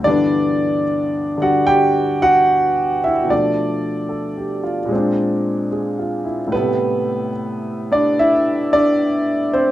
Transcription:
0.03 3.28 G2 soft
0.03 1.36 D3 soft
0.03 3.30 E3 soft
0.03 0.81 D5 loud
0.08 3.31 B3 medium
0.08 0.83 D4 medium
1.37 3.27 D3 soft
1.37 3.29 G3 soft
1.42 1.66 F#4 medium
1.42 1.65 F#5 medium
1.67 2.18 G4 medium
1.67 2.23 G5 loud
2.22 2.99 F#4 medium
2.22 3.05 F#5 loud
3.04 3.12 E4 medium
3.04 3.10 E5 medium
3.23 4.88 B2 soft
3.23 4.90 F3 soft
3.30 4.91 A3 soft
3.30 3.33 D4 medium
3.30 5.68 D5 medium
3.35 4.94 D4 soft
4.09 4.60 A4 soft
4.37 4.79 G4 soft
4.64 5.06 F4 soft
4.85 6.50 A#2 medium
4.85 6.51 G#3 medium
4.92 6.53 C4 medium
4.92 6.55 D4 medium
5.72 6.23 G#4 soft
5.99 6.41 F4 soft
6.25 6.67 E4 soft
6.48 9.72 A2 soft
6.52 9.72 G3 soft
6.52 7.30 B3 medium
6.52 7.29 B4 medium
6.56 9.72 C3 medium
6.56 9.72 A3 soft
7.92 8.14 D4 medium
7.92 8.17 D5 medium
8.19 8.31 E4 medium
8.19 8.31 E5 medium
8.73 9.48 D4 medium
8.73 9.48 D5 loud
9.53 9.72 C4 medium
9.53 9.72 C5 medium

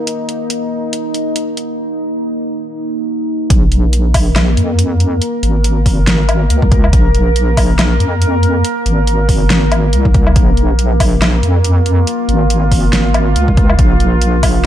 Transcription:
0.00 3.49 A#3 medium
0.00 3.53 D#4 medium
0.07 closed hi-hat medium
0.29 closed hi-hat soft
0.50 closed hi-hat medium
0.93 closed hi-hat medium
1.14 closed hi-hat soft
1.36 closed hi-hat medium
1.57 closed hi-hat medium
3.50 4.56 A#1 loud
3.50 14.66 A#3 medium
3.50 10.38 A#4 medium
3.50 kick loud
3.50 closed hi-hat medium
3.72 closed hi-hat medium
3.93 closed hi-hat medium
4.14 kick medium
4.14 open hi-hat loud
4.14 low woodblock medium
4.36 snare loud
4.36 closed hi-hat medium
4.36 low woodblock medium
4.57 5.20 F2 medium
4.57 closed hi-hat medium
4.79 closed hi-hat medium
5.00 closed hi-hat medium
5.22 closed hi-hat medium
5.43 6.49 G#1 medium
5.43 closed hi-hat medium
5.64 closed hi-hat medium
5.86 kick medium
5.86 open hi-hat medium
6.07 snare loud
6.07 closed hi-hat medium
6.29 closed hi-hat medium
6.29 low woodblock medium
6.50 6.92 C#2 medium
6.50 closed hi-hat medium
6.62 kick medium
6.72 kick loud
6.72 closed hi-hat medium
6.84 low woodblock medium
6.93 7.99 A#1 loud
6.93 kick loud
6.93 closed hi-hat medium
7.15 closed hi-hat medium
7.36 closed hi-hat medium
7.57 kick medium
7.57 open hi-hat medium
7.57 low woodblock medium
7.79 snare loud
7.79 closed hi-hat medium
7.79 low woodblock medium
8.00 8.63 F2 medium
8.00 closed hi-hat medium
8.22 closed hi-hat medium
8.43 closed hi-hat medium
8.65 closed hi-hat medium
8.86 9.94 G#1 medium
8.86 closed hi-hat medium
9.07 closed hi-hat medium
9.29 kick medium
9.29 open hi-hat medium
9.50 snare loud
9.50 closed hi-hat medium
9.72 closed hi-hat soft
9.72 low woodblock medium
9.93 10.35 C2 loud
9.93 closed hi-hat medium
10.05 kick medium
10.14 kick loud
10.14 closed hi-hat medium
10.27 low woodblock medium
10.36 11.42 A#1 medium
10.36 14.66 F4 medium
10.36 kick loud
10.36 closed hi-hat medium
10.57 closed hi-hat soft
10.79 closed hi-hat medium
11.00 kick medium
11.00 open hi-hat medium
11.00 low woodblock medium
11.22 snare loud
11.22 closed hi-hat medium
11.22 low woodblock medium
11.43 12.06 F2 medium
11.43 closed hi-hat soft
11.64 closed hi-hat medium
11.86 closed hi-hat medium
12.07 closed hi-hat medium
12.29 13.35 G#1 medium
12.29 closed hi-hat soft
12.50 closed hi-hat medium
12.72 kick medium
12.72 open hi-hat medium
12.93 snare loud
12.93 closed hi-hat medium
13.14 closed hi-hat soft
13.14 low woodblock medium
13.36 13.77 C#2 medium
13.36 closed hi-hat medium
13.48 kick medium
13.57 kick loud
13.57 closed hi-hat medium
13.70 low woodblock medium
13.79 14.66 A#1 loud
13.79 kick loud
13.79 closed hi-hat medium
14.00 closed hi-hat medium
14.22 closed hi-hat medium
14.43 kick medium
14.43 open hi-hat loud
14.43 low woodblock medium

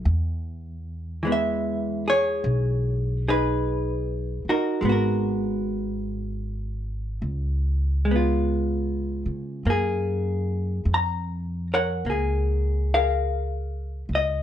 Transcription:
0.05 2.40 E2 medium
1.23 4.83 E3 soft
1.23 4.80 G#3 soft
1.23 3.29 B3 soft
1.32 2.04 E5 medium
2.08 3.27 G#4 medium
2.08 3.30 C#5 medium
2.44 4.41 B1 medium
3.28 4.49 D#4 soft
3.28 4.49 G#4 soft
3.28 4.50 B4 medium
4.45 muted upright bass stroke soft
4.49 4.85 D#4 soft
4.49 4.88 F#4 soft
4.49 4.91 A#4 medium
4.81 7.19 G#1 medium
4.81 7.22 G#3 soft
4.85 7.25 B3 soft
4.89 7.27 F#4 soft
4.89 7.28 A#4 soft
7.22 9.22 C#2 medium
8.05 9.65 G#3 soft
8.11 9.66 B3 soft
8.16 9.70 F4 soft
9.26 9.62 C#3 soft
9.65 10.83 F#2 medium
9.65 11.74 A#3 soft
9.70 10.94 G#4 medium
10.85 12.03 F2 medium
10.94 11.67 A#5 medium
11.74 12.93 A#4 medium
11.74 12.06 C#5 soft
11.74 12.94 F#5 medium
12.05 14.04 C#2 medium
12.05 12.95 A#3 soft
12.10 12.93 G#4 soft
12.94 14.43 G#4 soft
12.94 14.43 A#4 soft
12.94 14.08 F5 medium
14.09 14.43 C#2 medium
14.15 14.43 D#5 medium

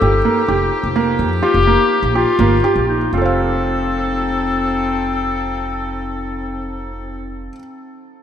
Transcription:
0.00 0.21 G1 loud
0.00 2.96 F3 medium
0.00 2.96 D#4 medium
0.00 2.96 G4 medium
0.00 0.18 G4 medium
0.00 1.12 A4 loud
0.25 0.41 A#3 medium
0.48 0.68 F1 medium
0.48 0.80 G4 medium
0.83 1.21 F1 medium
0.96 1.28 A#3 medium
1.19 1.39 F2 medium
1.43 1.59 F4 medium
1.43 2.11 G4 loud
1.54 1.75 F1 medium
1.67 2.00 A#3 medium
2.03 2.23 A#1 medium
2.15 2.85 F4 loud
2.15 2.32 G4 medium
2.39 2.60 G1 loud
2.39 2.56 A#3 medium
2.64 2.97 G4 medium
2.76 3.07 A#1 medium
2.88 3.11 D#4 medium
3.13 7.47 F1 medium
3.13 7.48 F3 medium
3.13 7.47 C4 medium
3.13 7.48 D#4 medium
3.13 7.48 F4 medium
3.13 7.48 A4 medium
3.17 7.52 A4 medium
3.22 7.56 C5 medium
3.22 7.60 F5 medium

